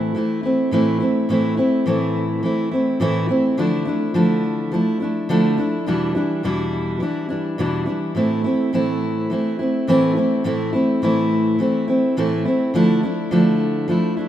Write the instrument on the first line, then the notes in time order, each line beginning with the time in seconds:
steel-string acoustic guitar
Already playing: A2 E3 A3 C4 E4
0.15 E3 A3 C4 E4
0.43 A3 C4 E4
0.71 A2 E3 A3 C4 E4
1.00 A3 C4 E4
1.29 A2 E3 A3 C4 E4
1.57 A3 C4 E4
1.86 A2 E3 A3 C4 E4
2.43 E3 A3 C4 E4
2.71 A3 C4 E4
3.00 A2 E3 A3 C4 E4
3.29 A3 C4 E4
3.58 D3 F3 A3 D4 E4
3.85 A3 D4 E4
4.14 D3 F3 A3 D4 E4
4.72 F3 A3 D4 E4
5.00 A3 D4 E4
5.29 D3 F3 A3 D4 E4
5.58 A3 D4 E4
5.86 E2 B2 E3 G3 D4 E4
6.15 E3 G3 D4 E4
6.43 E2 B2 E3 G3 D4 E4
7.00 E3 G3 D4 E4
7.29 E3 G3 D4 E4
7.58 E2 B2 E3 G3 D4 E4
7.86 E3 G3 D4 E4
8.15 A2 E3 A3 C4 E4
8.44 A3 C4 E4
8.73 A2 E3 A3 C4 E4
9.30 E3 A3 C4 E4
9.59 A3 C4 E4
9.87 A2 E3 A3 C4 E4
10.15 A3 C4 E4
10.44 A2 E3 A3 C4 E4
10.73 A3 C4 E4
11.02 A2 E3 A3 C4 E4
11.59 E3 A3 C4 E4
11.88 A3 C4 E4
12.17 A2 E3 A3 C4 E4
12.45 A3 C4 E4
12.74 D3 F3 A3 D4 E4
13.03 A3 D4 E4
13.31 D3 F3 A3 D4 E4
13.88 F3 A3 D4 E4
14.17 A3 D4 E4